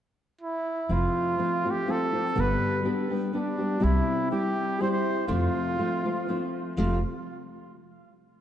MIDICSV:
0, 0, Header, 1, 4, 480
1, 0, Start_track
1, 0, Key_signature, -1, "major"
1, 0, Tempo, 490196
1, 872, Time_signature, 3, 2, 24, 8
1, 8234, End_track
2, 0, Start_track
2, 0, Title_t, "Trumpet"
2, 0, Program_c, 0, 56
2, 405, Note_on_c, 0, 64, 63
2, 906, Note_on_c, 0, 65, 65
2, 920, Note_off_c, 0, 64, 0
2, 1670, Note_on_c, 0, 67, 74
2, 1684, Note_off_c, 0, 65, 0
2, 1868, Note_on_c, 0, 69, 79
2, 1883, Note_off_c, 0, 67, 0
2, 2350, Note_on_c, 0, 71, 86
2, 2365, Note_off_c, 0, 69, 0
2, 2813, Note_off_c, 0, 71, 0
2, 3282, Note_on_c, 0, 62, 64
2, 3753, Note_on_c, 0, 64, 74
2, 3768, Note_off_c, 0, 62, 0
2, 4218, Note_off_c, 0, 64, 0
2, 4224, Note_on_c, 0, 67, 75
2, 4712, Note_on_c, 0, 72, 81
2, 4727, Note_off_c, 0, 67, 0
2, 4803, Note_off_c, 0, 72, 0
2, 4803, Note_on_c, 0, 72, 77
2, 5159, Note_off_c, 0, 72, 0
2, 5164, Note_on_c, 0, 65, 71
2, 6348, Note_off_c, 0, 65, 0
2, 6620, Note_on_c, 0, 65, 62
2, 6858, Note_off_c, 0, 65, 0
2, 8234, End_track
3, 0, Start_track
3, 0, Title_t, "Nylon-string guitar"
3, 0, Program_c, 1, 24
3, 872, Note_on_c, 1, 41, 60
3, 873, Note_on_c, 1, 48, 60
3, 877, Note_on_c, 1, 53, 61
3, 877, Note_on_c, 1, 57, 49
3, 879, Note_on_c, 1, 60, 58
3, 884, Note_on_c, 1, 65, 57
3, 1344, Note_off_c, 1, 57, 0
3, 1347, Note_off_c, 1, 53, 0
3, 1347, Note_off_c, 1, 60, 0
3, 1356, Note_on_c, 1, 57, 46
3, 1358, Note_off_c, 1, 41, 0
3, 1358, Note_off_c, 1, 48, 0
3, 1359, Note_off_c, 1, 65, 0
3, 1359, Note_on_c, 1, 53, 57
3, 1359, Note_on_c, 1, 60, 48
3, 1371, Note_on_c, 1, 65, 49
3, 1606, Note_off_c, 1, 60, 0
3, 1606, Note_off_c, 1, 65, 0
3, 1612, Note_off_c, 1, 57, 0
3, 1614, Note_off_c, 1, 53, 0
3, 1618, Note_on_c, 1, 60, 35
3, 1618, Note_on_c, 1, 65, 38
3, 1628, Note_on_c, 1, 53, 29
3, 1629, Note_on_c, 1, 57, 37
3, 1822, Note_off_c, 1, 53, 0
3, 1826, Note_off_c, 1, 57, 0
3, 1829, Note_off_c, 1, 65, 0
3, 1831, Note_off_c, 1, 60, 0
3, 1834, Note_on_c, 1, 53, 55
3, 1838, Note_on_c, 1, 57, 58
3, 1840, Note_on_c, 1, 65, 60
3, 1843, Note_on_c, 1, 60, 60
3, 2071, Note_off_c, 1, 65, 0
3, 2077, Note_off_c, 1, 57, 0
3, 2082, Note_on_c, 1, 65, 37
3, 2084, Note_off_c, 1, 60, 0
3, 2086, Note_off_c, 1, 53, 0
3, 2089, Note_on_c, 1, 57, 27
3, 2096, Note_on_c, 1, 60, 33
3, 2098, Note_on_c, 1, 53, 29
3, 2299, Note_on_c, 1, 50, 67
3, 2302, Note_off_c, 1, 53, 0
3, 2302, Note_off_c, 1, 57, 0
3, 2303, Note_off_c, 1, 65, 0
3, 2304, Note_on_c, 1, 43, 55
3, 2306, Note_on_c, 1, 55, 68
3, 2306, Note_on_c, 1, 59, 68
3, 2307, Note_on_c, 1, 67, 60
3, 2310, Note_off_c, 1, 60, 0
3, 2314, Note_on_c, 1, 62, 53
3, 2766, Note_off_c, 1, 55, 0
3, 2767, Note_off_c, 1, 59, 0
3, 2770, Note_on_c, 1, 55, 44
3, 2778, Note_on_c, 1, 59, 54
3, 2783, Note_off_c, 1, 62, 0
3, 2788, Note_off_c, 1, 50, 0
3, 2790, Note_off_c, 1, 43, 0
3, 2790, Note_off_c, 1, 67, 0
3, 2794, Note_on_c, 1, 67, 65
3, 2795, Note_on_c, 1, 62, 55
3, 3026, Note_off_c, 1, 67, 0
3, 3030, Note_off_c, 1, 62, 0
3, 3036, Note_off_c, 1, 55, 0
3, 3038, Note_on_c, 1, 67, 43
3, 3040, Note_off_c, 1, 59, 0
3, 3041, Note_on_c, 1, 62, 40
3, 3051, Note_on_c, 1, 55, 40
3, 3054, Note_on_c, 1, 59, 36
3, 3250, Note_off_c, 1, 55, 0
3, 3256, Note_off_c, 1, 62, 0
3, 3258, Note_off_c, 1, 59, 0
3, 3262, Note_on_c, 1, 55, 56
3, 3268, Note_on_c, 1, 62, 55
3, 3269, Note_off_c, 1, 67, 0
3, 3270, Note_on_c, 1, 59, 52
3, 3279, Note_on_c, 1, 67, 62
3, 3496, Note_off_c, 1, 67, 0
3, 3501, Note_off_c, 1, 62, 0
3, 3507, Note_on_c, 1, 67, 31
3, 3508, Note_off_c, 1, 59, 0
3, 3513, Note_on_c, 1, 62, 45
3, 3517, Note_off_c, 1, 55, 0
3, 3520, Note_on_c, 1, 59, 30
3, 3529, Note_on_c, 1, 55, 30
3, 3707, Note_off_c, 1, 55, 0
3, 3717, Note_off_c, 1, 62, 0
3, 3718, Note_off_c, 1, 67, 0
3, 3719, Note_on_c, 1, 55, 61
3, 3721, Note_on_c, 1, 64, 69
3, 3722, Note_off_c, 1, 59, 0
3, 3722, Note_on_c, 1, 48, 75
3, 3726, Note_on_c, 1, 60, 70
3, 3730, Note_on_c, 1, 67, 70
3, 4212, Note_off_c, 1, 55, 0
3, 4213, Note_off_c, 1, 48, 0
3, 4213, Note_off_c, 1, 64, 0
3, 4217, Note_off_c, 1, 67, 0
3, 4222, Note_on_c, 1, 55, 54
3, 4224, Note_off_c, 1, 60, 0
3, 4227, Note_on_c, 1, 64, 57
3, 4228, Note_on_c, 1, 60, 59
3, 4240, Note_on_c, 1, 67, 67
3, 4690, Note_off_c, 1, 55, 0
3, 4702, Note_off_c, 1, 64, 0
3, 4702, Note_on_c, 1, 55, 56
3, 4703, Note_off_c, 1, 60, 0
3, 4703, Note_off_c, 1, 67, 0
3, 4707, Note_on_c, 1, 60, 60
3, 4713, Note_on_c, 1, 64, 58
3, 4715, Note_on_c, 1, 67, 54
3, 5161, Note_on_c, 1, 41, 63
3, 5164, Note_on_c, 1, 48, 69
3, 5167, Note_off_c, 1, 60, 0
3, 5170, Note_off_c, 1, 67, 0
3, 5171, Note_on_c, 1, 57, 78
3, 5172, Note_off_c, 1, 55, 0
3, 5174, Note_on_c, 1, 65, 56
3, 5175, Note_off_c, 1, 64, 0
3, 5176, Note_on_c, 1, 53, 57
3, 5179, Note_on_c, 1, 60, 69
3, 5647, Note_off_c, 1, 41, 0
3, 5649, Note_off_c, 1, 48, 0
3, 5655, Note_off_c, 1, 53, 0
3, 5659, Note_on_c, 1, 53, 53
3, 5664, Note_off_c, 1, 65, 0
3, 5665, Note_off_c, 1, 57, 0
3, 5666, Note_off_c, 1, 60, 0
3, 5668, Note_on_c, 1, 65, 55
3, 5669, Note_on_c, 1, 57, 61
3, 5670, Note_on_c, 1, 60, 56
3, 5911, Note_off_c, 1, 53, 0
3, 5911, Note_off_c, 1, 65, 0
3, 5917, Note_off_c, 1, 57, 0
3, 5917, Note_off_c, 1, 60, 0
3, 5923, Note_on_c, 1, 65, 55
3, 5931, Note_on_c, 1, 60, 41
3, 5936, Note_on_c, 1, 57, 40
3, 5937, Note_on_c, 1, 53, 37
3, 6141, Note_off_c, 1, 53, 0
3, 6144, Note_off_c, 1, 60, 0
3, 6145, Note_off_c, 1, 57, 0
3, 6145, Note_off_c, 1, 65, 0
3, 6153, Note_on_c, 1, 53, 54
3, 6156, Note_on_c, 1, 60, 58
3, 6157, Note_on_c, 1, 57, 67
3, 6167, Note_on_c, 1, 65, 61
3, 6625, Note_on_c, 1, 41, 68
3, 6633, Note_off_c, 1, 53, 0
3, 6633, Note_on_c, 1, 48, 60
3, 6634, Note_off_c, 1, 57, 0
3, 6637, Note_on_c, 1, 53, 62
3, 6638, Note_on_c, 1, 57, 71
3, 6643, Note_off_c, 1, 60, 0
3, 6647, Note_on_c, 1, 60, 59
3, 6648, Note_off_c, 1, 65, 0
3, 6652, Note_on_c, 1, 65, 66
3, 6828, Note_off_c, 1, 41, 0
3, 6832, Note_off_c, 1, 48, 0
3, 6834, Note_off_c, 1, 53, 0
3, 6834, Note_off_c, 1, 57, 0
3, 6839, Note_off_c, 1, 60, 0
3, 6841, Note_off_c, 1, 65, 0
3, 8234, End_track
4, 0, Start_track
4, 0, Title_t, "Upright bass"
4, 0, Program_c, 2, 32
4, 875, Note_on_c, 2, 29, 68
4, 1041, Note_off_c, 2, 29, 0
4, 2326, Note_on_c, 2, 31, 81
4, 2488, Note_off_c, 2, 31, 0
4, 3754, Note_on_c, 2, 36, 78
4, 3917, Note_off_c, 2, 36, 0
4, 5178, Note_on_c, 2, 41, 87
4, 5342, Note_off_c, 2, 41, 0
4, 6640, Note_on_c, 2, 29, 71
4, 6869, Note_off_c, 2, 29, 0
4, 8234, End_track
0, 0, End_of_file